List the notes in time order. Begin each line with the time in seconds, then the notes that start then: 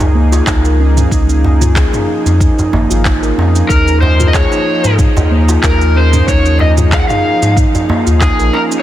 Already playing: F3 A#3 D#4 F4 G#4
0.00 C#2 D#4, darbuka tek, darbuka dum, cabasa
0.15 A#3, darbuka ka
0.32 F4, darbuka ka, darbuka tek, cabasa
0.47 C#2 D#4, kick, clap, cabasa
0.64 A#4, cabasa
0.79 C#4
0.97 C#4, mid tom, darbuka ka, cabasa
1.11 C#2 D#4, kick, cabasa
1.29 D#4, cabasa
1.44 D#4, darbuka tek, darbuka dum
1.61 F4, mid tom, cabasa
1.76 G#4, kick, clap, cabasa
1.93 D#4, mid tom, darbuka tek, cabasa
2.08 D#4
2.26 F2 D#4, darbuka ka, cabasa
2.40 D#4, kick, cabasa
2.58 D#4, darbuka dum, cabasa
2.73 G#1 A#3, darbuka tek, darbuka dum
2.90 G#1 F4, cabasa
3.05 D#4, kick, clap, cabasa
3.22 A#4, cabasa
3.37 F2 C#4, darbuka tek
3.55 C#4, cabasa
3.69 D#2 A#4, kick, cabasa
3.87 D#4, cabasa
4.01 C5, darbuka tek, darbuka dum
4.20 F4, mid tom, cabasa
4.28 D#5
4.34 G#4 C#5, kick, clap, cabasa
4.52 D#4, darbuka tek, cabasa
4.67 D#4
4.84 G#2, darbuka ka, cabasa
4.99 D#4, kick, cabasa
5.16 D#2 D#4, darbuka tek, darbuka dum, cabasa
5.31 A#3, darbuka ka
5.48 F4, darbuka ka, darbuka tek, cabasa
5.63 D#2 D#4 A#4, kick, clap, cabasa
5.81 A#4, cabasa
5.96 C#4 C5
6.13 C#4, mid tom, darbuka ka, cabasa
6.28 D#2 D#4 C#5, kick, cabasa
6.45 D#4, cabasa
6.59 D#4 D#5, darbuka tek, darbuka dum
6.77 F4, mid tom, cabasa
6.92 G#4 F5, kick, clap, cabasa
7.00 F#5
7.08 D#4 F5, mid tom, darbuka tek, cabasa
7.25 D#4
7.42 G#2 D#4, darbuka ka, cabasa
7.57 kick, cabasa
7.75 D#4, darbuka dum, cabasa
7.89 A#3, darbuka tek, darbuka dum
8.07 D#2 F4, cabasa
8.21 D#4 G#4, kick, clap, cabasa
8.39 A#1 A#4, cabasa
8.53 C#4 A#4, darbuka tek
8.71 C#4, cabasa